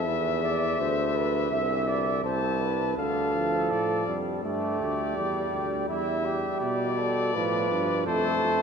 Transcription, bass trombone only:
0.06 0.78 E2 loud
0.79 1.50 D2 loud
1.51 2.23 C2 medium
2.24 2.96 C2 loud
2.98 3.73 D2 medium
3.71 4.07 A2 medium
4.07 4.43 F2 medium
4.44 4.80 G2 medium
4.80 5.16 D2 medium
5.17 5.52 E2 medium
5.53 5.89 D2 medium
5.89 6.45 E2 medium
6.62 7.36 B2 medium
7.35 7.70 A2 medium
7.71 8.07 G2 medium
8.07 8.43 F2 medium
8.44 8.62 F2 medium

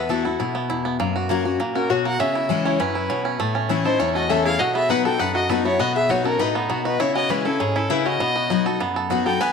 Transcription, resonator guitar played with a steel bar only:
1.75 1.90 C#4 medium
1.90 2.05 F#4 medium
2.05 2.20 A#4 medium
2.20 2.65 G#4 medium
2.66 2.79 E4 medium
2.80 3.40 E4 medium
3.85 4.00 D#4 medium
4.00 4.15 E4 medium
4.16 4.30 F#4 medium
4.30 4.45 A4 medium
4.46 4.60 G#4 loud
4.60 4.75 F#4 medium
4.75 4.90 G#4 medium
4.90 5.05 B4 medium
5.06 5.19 A4 medium
5.19 5.35 B4 medium
5.35 5.50 F#4 medium
5.50 5.65 D#4 medium
5.65 5.80 E4 medium
5.80 5.95 F#4 medium
5.96 6.10 G#4 medium
6.10 6.25 F#4 medium
6.25 6.40 C#4 medium
6.40 6.55 D#4 medium
6.55 6.69 F#3 medium
6.70 6.85 B3 soft
6.86 7.00 D#4 medium
7.00 7.15 E4 medium
7.15 7.30 F#4 medium
7.30 7.46 E4 medium
7.46 7.59 C#4 medium
7.60 7.74 C#4 medium
7.76 7.91 C#4 medium
7.91 8.06 E4 medium
8.06 8.77 F#4 medium
9.26 9.41 A4 medium
9.41 9.53 B4 medium

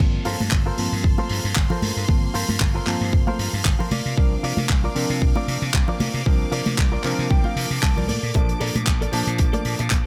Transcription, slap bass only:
0.00 0.17 G1 medium
0.26 0.35 G2 medium
0.40 0.48 G2 medium
0.52 0.69 G1 medium
0.78 0.87 G2 medium
0.92 1.06 G2 loud
1.04 1.13 G1 medium
1.30 1.39 G2 medium
1.44 1.52 G2 medium
1.56 1.66 G1 medium
1.82 1.91 G2 medium
1.97 2.04 G2 medium
2.09 2.26 G1 medium
2.35 2.44 G2 medium
2.49 2.56 G2 medium
2.61 2.78 G1 medium
2.87 2.96 G2 medium
3.01 3.15 G2 loud
3.13 3.22 G1 medium
3.39 3.48 G2 medium
3.53 3.61 G2 medium
3.65 3.74 G1 medium
3.91 4.00 C3 medium
4.06 4.13 C3 medium
4.18 4.35 C2 medium
4.43 4.53 C3 medium
4.58 4.65 C3 medium
4.70 4.87 C2 medium
4.96 5.05 C3 medium
5.10 5.23 C3 loud
5.22 5.31 C2 medium
5.48 5.57 C3 medium
5.62 5.69 C3 medium
5.74 5.83 C2 medium
6.00 6.09 C3 medium
6.14 6.22 C3 medium
6.26 6.44 C2 medium
6.52 6.61 C3 medium
6.66 6.74 C3 medium
6.78 6.96 C2 medium
7.04 7.13 C3 medium
7.19 7.26 C3 medium
7.31 7.40 C2 medium
7.56 7.65 C3 medium
7.71 7.78 C3 medium
7.83 8.10 C2 medium
8.09 8.18 A#2 medium
8.23 8.30 A#2 medium
8.35 8.52 A#1 medium
8.61 8.70 A#2 medium
8.75 8.83 A#2 medium
8.87 9.04 A#1 medium
9.13 9.22 A#2 medium
9.27 9.41 A#2 loud
9.39 9.48 A#1 medium
9.65 9.74 A#2 medium
9.80 9.87 A#2 medium
9.91 10.00 A#1 medium

